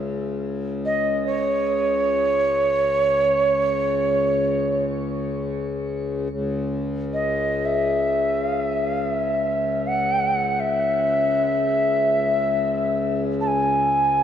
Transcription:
Already playing: C#2 C#3
0.85 D#5
1.27 C#5
6.30 C#2 C#3
7.13 D#5
7.65 E5
8.43 F5
8.65 E5
8.88 F5
9.09 E5
9.87 F#5
10.60 E5
13.41 A5
13.47 G#5

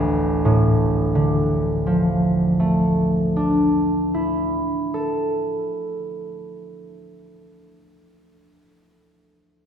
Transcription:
Already playing: D1 A1 D2 F3 A3
0.45 A2
1.15 D3
1.87 F3
2.60 A3
3.36 D4
4.14 E4
4.94 A4

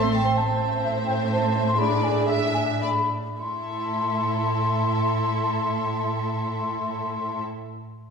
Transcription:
Already playing: A1 A3 A4 E5 C6
0.01 C4 C5 C6
0.12 A3 E5 G5 A5
0.24 C4 C5 C6
0.36 A2 C4 C5 E5 A5
0.82 C5 E5
1.06 G5
1.31 A5
1.67 C6
1.78 D4 G#4 D5 B5
2.04 G#5
2.28 E5
2.54 G#5
2.82 D5 B5
3.39 A2 E4 A4 E5 C6

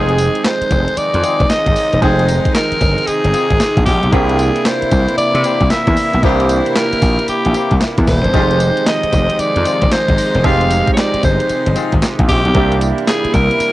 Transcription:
Already playing: F1 C3 D#3 F3 G#3 C4 D#4 F4 G#4 G5
0.09 closed hi-hat
0.18 closed hi-hat, tambourine
0.35 closed hi-hat
0.44 C5, snare, clap, closed hi-hat, tambourine
0.61 muted slap bass stroke, closed hi-hat
0.71 F1, kick, closed hi-hat, tambourine
0.88 closed hi-hat
0.97 D5, muted slap bass stroke, closed hi-hat, tambourine
1.14 F2, closed hi-hat
1.23 C4 D#4 F4 G#4, closed hi-hat, tambourine
1.40 F1, kick, closed hi-hat
1.50 D#5, muted slap bass stroke, snare, clap, closed hi-hat, tambourine
1.66 G#1, kick, closed hi-hat
1.76 open hi-hat, tambourine
1.93 E1, closed hi-hat
2.02 F1 G#3 C4 D#4 F4 G#4 C5 G5, kick, closed hi-hat
2.19 closed hi-hat
2.29 closed hi-hat, tambourine
2.45 kick, closed hi-hat
2.55 A#4, snare, clap, closed hi-hat, tambourine
2.72 muted slap bass stroke, closed hi-hat
2.81 G1, kick, closed hi-hat, tambourine
2.98 closed hi-hat
3.07 G#4, muted slap bass stroke, closed hi-hat, tambourine
3.24 G1, closed hi-hat
3.33 C4 D#4 F4 G#4, closed hi-hat, tambourine
3.50 G#1, kick, closed hi-hat
3.60 snare, clap, closed hi-hat, tambourine
3.77 A#1, kick, closed hi-hat
3.86 A#1 G4, kick, open hi-hat, tambourine
4.03 B1, closed hi-hat
4.12 C2 E3 A#3 C4 D4 E4 G4 G#4 G5, kick, closed hi-hat
4.29 closed hi-hat
4.39 closed hi-hat, tambourine
4.56 closed hi-hat
4.65 C5, snare, clap, closed hi-hat, tambourine
4.82 muted slap bass stroke, closed hi-hat
4.91 C2, kick, closed hi-hat, tambourine
5.08 closed hi-hat
5.18 D5, muted slap bass stroke, closed hi-hat, tambourine
5.35 C3, closed hi-hat
5.44 A#3 C4 E4 G4, closed hi-hat, tambourine
5.61 C2, kick, closed hi-hat
5.70 E5, muted slap bass stroke, snare, clap, closed hi-hat, tambourine
5.87 E2, kick, closed hi-hat
5.97 open hi-hat, tambourine
6.13 B1, closed hi-hat
6.23 C2 A#3 C4 D4 E4 G4 C5, kick, closed hi-hat
6.40 closed hi-hat
6.49 closed hi-hat, tambourine
6.66 closed hi-hat
6.76 A#4, snare, clap, closed hi-hat, tambourine
6.93 muted slap bass stroke, closed hi-hat
7.02 A#1, kick, open hi-hat, tambourine
7.19 closed hi-hat
7.28 G4, muted slap bass stroke, closed hi-hat, tambourine
7.45 A#1, closed hi-hat
7.54 A#3 C4 E4 G4, closed hi-hat, tambourine
7.71 C2, kick, closed hi-hat
7.81 snare, clap, closed hi-hat, tambourine
7.98 E2, kick, closed hi-hat
8.07 D#1 C5, kick, snare, open hi-hat, tambourine
8.24 E1, closed hi-hat
8.33 F1 C3 D#3 F3 G3 G#3 C4 D#4 F4 G4, kick, closed hi-hat
8.40 G#3
8.51 closed hi-hat
8.60 closed hi-hat, tambourine
8.77 closed hi-hat
8.87 D#5, snare, clap, closed hi-hat, tambourine
9.04 muted slap bass stroke, closed hi-hat
9.13 F1, kick, closed hi-hat, tambourine
9.30 closed hi-hat
9.39 D5, muted slap bass stroke, closed hi-hat, tambourine
9.56 F2, closed hi-hat
9.65 G#3 C4 D#4 F4, closed hi-hat, tambourine
9.82 F1, kick, closed hi-hat
9.91 C5, muted slap bass stroke, snare, clap, closed hi-hat, tambourine
10.09 G#1, kick, closed hi-hat
10.18 open hi-hat, tambourine
10.35 E1, closed hi-hat
10.44 F1 G#3 C4 D#4 F4 G4 F5, kick, closed hi-hat
10.61 closed hi-hat
10.70 closed hi-hat, tambourine
10.87 kick, closed hi-hat
10.94 C#5, snare, closed hi-hat, tambourine
10.98 D5, clap
11.14 muted slap bass stroke, closed hi-hat
11.23 G1 C5, kick, closed hi-hat, tambourine
11.40 closed hi-hat
11.49 muted slap bass stroke, closed hi-hat, tambourine
11.66 G1, closed hi-hat
11.76 G#3 C4 D#4 F4, closed hi-hat, tambourine
11.92 G#1, kick, closed hi-hat
12.02 snare, clap, closed hi-hat, tambourine
12.19 A#1, kick, closed hi-hat
12.29 A#1 G4, kick, open hi-hat, tambourine
12.45 B1, closed hi-hat
12.54 C2 E3 G3 A#3 C4 D4 E4 G4, kick, closed hi-hat
12.72 closed hi-hat
12.81 closed hi-hat, tambourine
12.98 closed hi-hat
13.07 G#4, snare, clap, closed hi-hat, tambourine
13.25 muted slap bass stroke, closed hi-hat
13.34 C2 A#4, kick, closed hi-hat, tambourine
13.51 closed hi-hat
13.60 muted slap bass stroke, closed hi-hat, tambourine

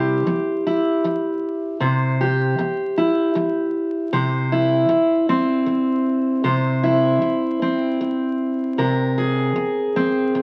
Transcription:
Already playing: C3 G3 E4 G4 C5
0.26 muted steel-string acoustic guitar stroke
0.67 E4
1.04 muted steel-string acoustic guitar stroke
1.80 C3 C5
2.21 G4
2.58 muted steel-string acoustic guitar stroke
2.98 E4
3.35 muted steel-string acoustic guitar stroke
4.13 C3 C5
4.52 E4
4.89 muted steel-string acoustic guitar stroke
5.29 C4
5.66 muted steel-string acoustic guitar stroke
6.44 C3 C5
6.83 E4
7.22 muted steel-string acoustic guitar stroke
7.62 C4
8.01 muted steel-string acoustic guitar stroke
8.78 C3 A#4
9.18 G#4
9.56 muted steel-string acoustic guitar stroke
9.96 C4
10.35 muted steel-string acoustic guitar stroke

